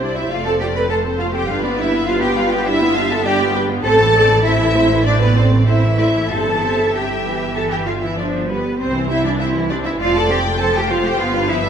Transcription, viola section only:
0.01 G3 E4
0.16 C4 G4
0.31 A3 F4
0.45 C4 A4
0.59 A3 F4
0.73 C4 A4
0.89 A3 F4
1.03 C4 A4
1.18 A3 F4
1.33 C4 A4
1.47 G3 D4
1.62 B3 F4
1.77 G3 D4
1.91 B3 F4
2.06 G3 D4
2.21 B3 F4
2.36 G3 D4
2.51 B3 F4
2.65 G3 D4
2.80 B3 F4
2.95 G3 D4
3.10 B3 F4
3.25 G3 D4
3.39 B3 F4
3.55 G3 D4
3.69 B3 F4
3.83 A3 C4
3.99 E3 A3
4.14 A3 C4
4.28 E3 A3
4.44 A3 C4
4.59 E3 A3
4.74 A3 C4
4.89 E3 A3
5.05 A3 C4
5.20 E3 A3
5.35 A3 C4
5.51 E3 A3
5.66 A3 C4
5.82 E3 A3
5.98 A3 C4
6.15 E3 A3
6.31 G3 C4
6.47 E3 E4
6.63 G3 C4
6.78 E3 E4
6.94 C3
7.24 E3
7.56 E3
7.87 D3
8.02 E3
8.17 F3
8.47 G3
8.78 G3 C4
8.94 E3 E4
9.09 G3 C4
9.25 E3 E4
9.40 G3 C4
9.55 E3 E4
9.70 G3 C4
9.86 E3 E4
10.00 F3 C4
10.15 A3 F4
10.31 F3 C4
10.45 A3 F4
10.60 F3 C4
10.75 A3 F4
10.89 F3 C4
11.04 A3 F4
11.19 F3 B3
11.34 G3 D4
11.48 F3 B3
11.64 G3 D4

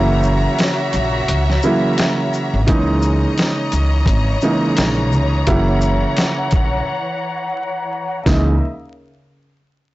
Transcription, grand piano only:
Already playing: C#3 E3 F#3 A#3 E4
1.64 C#3 E3 F#3 A#3 E4
2.67 C#3 E3 G#3 A#3 D#4
4.42 C#3 E3 G#3 A#3 D#4
5.47 C#3 E3 F#3 A#3 E4
8.26 C#3 E3 G#3 A#3 D#4

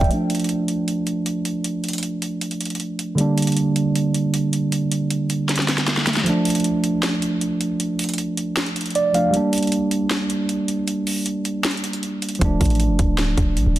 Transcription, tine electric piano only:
Already playing: D5 E5 G5
0.08 F3 A3
0.14 D4
3.15 D3 G3 A#3
3.21 D4
6.24 F3 A3
6.29 D4
8.95 D5
9.13 F3 A3 D4 F5
9.31 G3 A#3
9.36 D4
12.39 F3 A3
12.45 D4

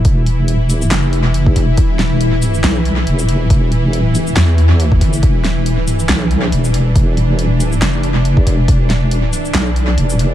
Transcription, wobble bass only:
0.05 E1
0.65 D#1
0.91 F1
2.64 B1
3.07 E1
3.50 E1
4.37 E2
4.82 D#2
5.01 G1
5.23 E1
6.09 B1
6.52 E1
6.96 E1
7.56 D#1
7.82 F1
8.68 E1
9.54 B1
9.98 E1

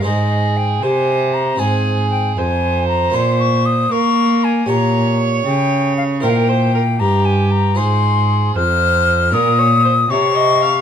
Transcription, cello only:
0.06 G#2
0.83 C3
1.60 G#2
2.37 F2
3.14 A#2
3.92 A#3
4.69 A#2
5.46 C#3
6.23 A#2
7.00 G2
7.77 G#2
8.56 F2
9.33 A#2
10.10 C3

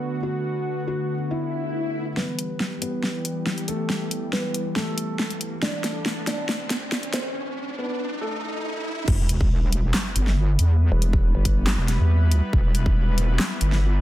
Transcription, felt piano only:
Already playing: B4
0.23 F#4
0.88 F#4
1.31 E4
2.17 B3 B4
2.82 B3 B4
3.68 A3 A4
4.33 B3 B4
4.76 A3 A4
5.62 D4 D5
6.27 D4 D5
7.14 C4 C5
7.78 B3 B4
8.21 A3 A4

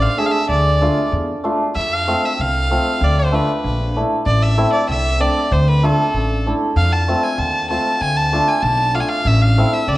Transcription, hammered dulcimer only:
0.18 A3 D4 G#4
0.81 A3 D4 F4
1.44 A3 D4 F4
2.08 A3 C4 F4
2.71 A3 C4 F4
3.32 A3 D4 F4
3.96 A3 D4 E4
4.58 A3 C4 E4
5.20 A3 C4 D4
5.83 A3 D4 F4
6.47 A3 D4 E4
7.08 A3 C4 F4
7.70 A3 C4 F4
8.33 A3 D4 F4
8.94 A3 D4 F4
9.58 A3 C4 E4

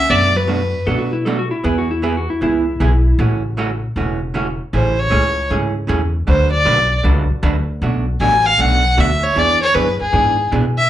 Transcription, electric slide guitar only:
0.87 A4
0.99 F#4
1.13 E4
1.25 A4
1.39 F#4
1.51 E4
1.64 B4
1.78 F#4
1.91 E4
2.03 B4
2.17 F#4
2.30 E4
2.43 E4

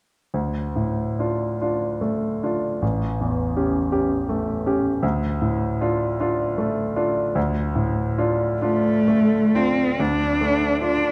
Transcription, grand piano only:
0.34 D2
0.76 A2
1.19 D4 F4
1.61 D4 F4
2.01 A3
2.43 D4 F4
2.82 A1
3.21 E2
3.57 C#4 G4
3.92 C#4 G4
4.29 A3
4.66 C#4 G4
5.03 D2
5.42 A2
5.81 D4 F4
6.20 D4 F4
6.58 A3
6.96 D4 F4
7.35 D2
7.75 A2
8.18 D4 F4
8.62 D4 F4
9.08 A3
9.55 D4 F4
9.99 D2
10.41 A3
10.82 D4 F4

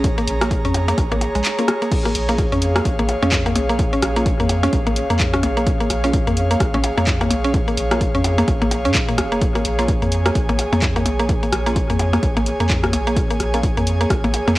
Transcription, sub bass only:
Already playing: A#1
0.27 A#1
0.65 F2
0.98 A#1
1.35 A#1
2.15 A#1
2.52 F2
2.85 A#1
3.23 F2
3.56 A#1
4.02 A#1
4.40 F2
4.73 A#1
5.10 F2
5.43 A#1
5.90 A#1
6.27 F2
6.60 A#1
6.98 F2
7.31 A#1
7.77 A#1
8.15 F2
8.48 A#1
8.85 A#2
9.18 F1
9.65 A#1
10.02 F2
10.35 A#1
10.73 F2
11.06 A#1
11.52 A#1
11.90 F2
12.23 A#1
12.60 F2
12.93 A#1
13.40 A#1
13.77 F2
14.10 A#1
14.48 F2

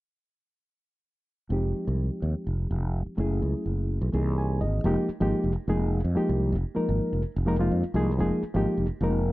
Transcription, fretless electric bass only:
1.50 F1
1.87 C2
2.22 D#2
2.47 F1
2.71 F1
3.06 muted fretless electric bass stroke
3.18 F#1
3.42 C#2
3.66 F#1
4.01 B1
4.13 C2
4.61 G#1
4.84 F1
5.09 muted fretless electric bass stroke
5.21 G#1
5.44 F1
5.68 F1
6.04 F2
6.18 muted fretless electric bass stroke
6.29 C2
6.52 F1
6.77 muted fretless electric bass stroke
6.89 G#1
7.13 F1
7.36 F1
7.71 F2
7.84 muted fretless electric bass stroke
7.94 C2
8.19 F1
8.43 muted fretless electric bass stroke
8.54 G#1
8.78 F1
9.01 F1

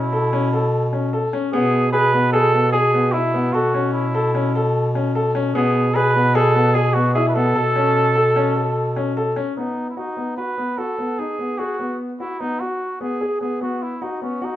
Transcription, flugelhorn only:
Already playing: E4
1.53 G#4
1.93 B4
2.32 A4
2.72 G#4
3.12 E4
3.53 F#4
3.93 E4
5.55 G#4
5.95 B4
6.35 A4
6.74 G#4
6.94 F#4
7.14 G#4
7.29 B4
7.34 A4
9.57 D#4
9.90 E4
9.97 D#4
10.37 B4
10.78 A4
11.19 G#4
11.59 F#4
12.20 E4
12.40 D#4
12.60 F#4
13.01 G#4
13.41 G#4
13.62 F#4
13.82 E4
14.02 D#4
14.23 C#4
14.44 D#4

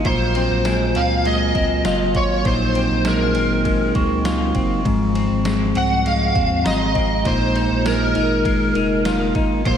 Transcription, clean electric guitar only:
Already playing: G#3 D#4 F4
0.06 A#2
0.36 C4
0.66 G#3
0.96 C4
1.26 G#3
1.56 C4
1.86 F4
2.45 A#2
2.76 C4
3.06 G#3
3.36 C4
3.65 G#3
3.95 C4
4.25 F4
4.55 C4
4.85 G#2
5.16 C4
5.45 G#3
5.75 C4
6.05 G#3
6.35 C4
6.65 F4
6.95 C4
7.25 A#2
7.56 D#4
7.85 G#3
8.16 D#4
8.46 G#3
8.76 D#4
9.06 F4
9.36 D#4
9.66 A#2

